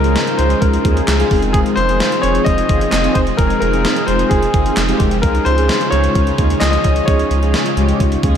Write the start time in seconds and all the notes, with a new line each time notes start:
Already playing: C#2 C#3 G#3 D#4 F4 A#4
0.04 G#3 C#4 F4 G#4, closed hi-hat
0.16 snare, closed hi-hat
0.27 closed hi-hat
0.38 C#2 G#3 C#4 F4 G#4 C5, closed hi-hat
0.50 closed hi-hat
0.60 C#2 A#4, kick, closed hi-hat
0.74 closed hi-hat
0.85 D#2 G#3 C#4 F4 G#4, kick, closed hi-hat
0.97 closed hi-hat
1.08 C#2, snare, clap, closed hi-hat
1.20 G#3 C#4 F4 G#4, closed hi-hat
1.31 F1 F3 G#3 C4 F4 G#4, kick, open hi-hat
1.42 closed hi-hat
1.53 G#4, kick, closed hi-hat
1.66 closed hi-hat
1.76 F1 C5, closed hi-hat
1.89 G#3 C4 F4 G#4, closed hi-hat
2.00 snare, closed hi-hat
2.12 closed hi-hat
2.22 F1 G#3 C4 F4 G#4 C#5, closed hi-hat
2.35 closed hi-hat
2.45 F1 D#5, kick, closed hi-hat
2.58 closed hi-hat
2.69 G1 G#3 C4 F4 G#4, kick, closed hi-hat
2.81 closed hi-hat
2.91 F1 D#5, snare, clap, closed hi-hat
3.04 G#3 C4 F4 G#4, closed hi-hat
3.14 F1 C5, kick, closed hi-hat
3.27 closed hi-hat
3.37 F1 G#3 C4 F4 G#4 A#4, kick, closed hi-hat
3.50 closed hi-hat
3.60 F1 A#4, closed hi-hat
3.73 G#3 C4 F4 G#4, closed hi-hat
3.85 snare, closed hi-hat
3.96 closed hi-hat
4.07 F1 G#3 C4 F4 G#4 C5, closed hi-hat
4.19 closed hi-hat
4.29 F1 G#4, kick, closed hi-hat
4.42 closed hi-hat
4.54 G1 G#3 C4 F4 G#4, kick, closed hi-hat
4.66 closed hi-hat
4.77 F1, snare, clap, closed hi-hat
4.89 G#3 C4 F4 G4, closed hi-hat
5.00 F1, kick, closed hi-hat
5.11 closed hi-hat
5.22 C#2 C#3 G#3 C#4 F4 G#4 A#4, kick, closed hi-hat
5.35 closed hi-hat
5.45 C#2 C5, closed hi-hat
5.58 G#3 C#4 F4 G#4, closed hi-hat
5.69 snare, closed hi-hat
5.81 closed hi-hat
5.91 C#2 G#3 C#4 F4 G#4 C#5, closed hi-hat
6.04 closed hi-hat
6.15 C#2, kick, closed hi-hat
6.27 closed hi-hat
6.38 D#2 G#3 C#4 F4 G#4, kick, closed hi-hat
6.50 closed hi-hat
6.60 C#2 D#5, snare, clap, closed hi-hat
6.71 G#3 C#4 F4 G#4 D#5, closed hi-hat
6.84 C#2, kick, closed hi-hat
6.96 closed hi-hat
7.05 C#2 G#3 C#4 F4 G#4 C#5, kick, closed hi-hat
7.19 closed hi-hat
7.31 C#2, closed hi-hat
7.43 G#3 C#4 F4 G#4, closed hi-hat
7.54 snare, closed hi-hat
7.66 closed hi-hat
7.77 C#2 G#3 C#4 F4 G4, closed hi-hat
7.89 closed hi-hat
8.00 C#2, kick, closed hi-hat
8.12 closed hi-hat
8.23 D#2 G#3 C#4 F4 G#4, kick, closed hi-hat